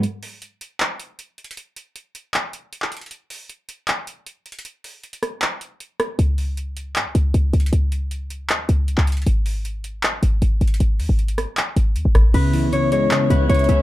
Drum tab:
CC |------------------------------------------------------------------------------------------------|------------------------------------------------------------------------------------------------|------------------------------------------------------------------------------------------------|------------------------------------------------------------------------------------------------|
HH |x-----------o-----------x-----------x-----------x-----------x-----------x-----------x---x---x---|x-----------x-----------x-----------x-----------x-----------x-----------x-----------x--x--x--x--|x-----------o-----------x-----------x-----------x-----------x-----------x-----------x---x---x---|x-----------o-----------x-----x-----x-----------x-----------x-----------x-----------x-----------|
CP |------------------------------------------------x-----------------------------------------------|------------------------------------------------x-----------------------------x-----------------|------------------------------------------------x-----------------------------------------------|------------------------------------------------x-----------------------------------------------|
SD |------------------------------------------------------------------------------------------------|------------------------------------------------------------------------------------------------|------------------------------------------------------------------------------------------------|------------------------------------r-----------------------------------------------r-----------|
BD |------------------------------------------------------------------------------------------------|------------------------------------------------------------------------------------------------|------------------------------------------------------------------------------------------------|------------------------------------------------------------------------------------------------|

CC |------------------------------------------------------------------------------------------------|------------------------------------------------------------------------------------------------|------------------------------------------------------------------------------------------------|------------------------------------------------------------------------------------------------|
HH |x-----------o-----------x-----------x-----------x-----------x-----------x-----------x---x---x---|x-----------x-----------x-----------x-----------x-----------x-----------x-----------x--x--x--x--|x-----------o-----------x-----------x-----------x-----------x-----------x-----------x---x---x---|x-----------o-----------x-----x-----x-----------x-----------x-----------x-----------x-----------|
CP |------------------------------------------------x-----------------------------------------------|------------------------------------------------x-----------------------------x-----------------|------------------------------------------------x-----------------------------------------------|------------------------------------------------x-----------------------------------------------|
SD |------------------------------------------------------------------------------------------------|------------------------------------------------------------------------------------------------|------------------------------------------------------------------------------------------------|------------------------------------r-----------------------------------------------r-----------|
BD |------------------------------------------------------------------------------------------------|------------------------------------------------------------------------------------------------|------------------------------------------------------------------------------------------------|------------------------------------------------------------------------------------o-----------|

CC |x-----------------------------------------------------------------------------------------------|
HH |x-----------o-----------x-----------x-----------x-----------x-----------x--x--x--x--x-----------|
CP |------------------------------------------------x-----------------------------------------------|
SD |------------------------------------------------------------------------------------------------|
BD |------------------------------------------------------------------------------------------------|